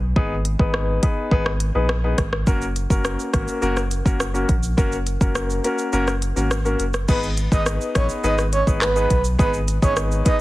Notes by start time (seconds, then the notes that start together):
Already playing: B1
0.16 G#1 B3 D#4 G#4 B4, kick
0.45 closed hi-hat
0.59 G#1 B3 D#4 G#4 B4, kick
0.74 cross-stick
1.02 B3 D#4 G#4 B4, kick, closed hi-hat
1.31 G#1 B3 D#4 G#4 B4, kick
1.46 cross-stick
1.60 closed hi-hat
1.75 A#1 B3 D#4 G#4 B4
1.89 cross-stick
2.04 B3 D#4 G#4 B4
2.18 G#1, kick, cross-stick, closed hi-hat
2.33 cross-stick
2.47 F#1 A#3 C#4 F#4 A#4, kick, shaker
2.62 shaker
2.76 closed hi-hat, shaker
2.90 F#1 A#3 C#4 F#4 A#4, kick, shaker
3.05 cross-stick, shaker
3.20 shaker
3.33 G#1 A#3 C#4 F#4 A#4, kick, cross-stick, closed hi-hat, shaker
3.48 shaker
3.62 F#1 A#3 C#4 F#4 A#4, shaker
3.77 cross-stick, shaker
3.91 closed hi-hat, shaker
4.05 F#1 A#3 C#4 F#4 A#4, kick, shaker
4.20 cross-stick, shaker
4.34 A#3 C#4 F#4 A#4, shaker
4.49 A#1, kick, closed hi-hat, shaker
4.63 shaker
4.77 F#1 A#3 C#4 F#4 A#4, kick, shaker
4.92 shaker
5.07 closed hi-hat, shaker
5.21 F#1 A#3 C#4 F#4 A#4, kick, shaker
5.35 cross-stick, shaker
5.50 shaker
5.64 A#3 C#4 F#4 A#4, closed hi-hat, shaker
5.78 shaker
5.93 F#1 A#3 C#4 F#4 A#4, shaker
6.07 cross-stick, shaker
6.22 closed hi-hat, shaker
6.36 G#1 A#3 C#4 F#4 A#4, shaker
6.51 cross-stick, shaker
6.65 A#3 C#4 F#4 A#4, shaker
6.79 F#1, closed hi-hat, shaker
6.94 cross-stick, shaker
7.08 G#1 B3 D#4 G#4 B4, kick, crash, shaker
7.23 shaker
7.37 closed hi-hat, shaker
7.52 G#1 B3 D#4 G#4 B4 D#5, kick, shaker
7.66 cross-stick, shaker
7.81 shaker
7.95 A#1 B3 D#4 G#4 B4 C#5, kick, cross-stick, closed hi-hat, shaker
8.09 shaker
8.24 G#1 B3 D#4 G#4 B4 D#5, shaker
8.38 cross-stick, shaker
8.52 C#5, closed hi-hat, shaker
8.67 G#1 B3 D#4 G#4 B4, kick, shaker
8.81 B4, cross-stick, clap, shaker
8.96 B3 D#4 G#4 B4, shaker
9.10 B1, kick, closed hi-hat, shaker
9.25 shaker
9.39 G#1 B3 D#4 G#4 B4, kick, shaker
9.54 shaker
9.68 closed hi-hat, shaker
9.82 G#1 B3 D#4 G#4 B4 C#5, kick, shaker
9.97 cross-stick, shaker
10.12 shaker
10.25 B3 D#4 G#4 B4 D#5, kick, closed hi-hat, shaker